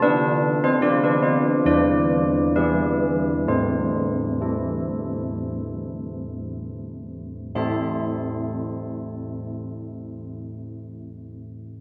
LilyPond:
\new Staff \with { instrumentName = "Church bells" } { \time 4/4 \key a \minor \tempo 4 = 58 << { b'8. c''16 d''16 b'16 c''8 d''4 b'4 | c''2. r4 | <a e' c'' e'' a'' c'''>1 | } \\ { d'4 <f' b'>4 e4 <e' gis'>4 | a4 <e' a'>2. | r1 | } >> }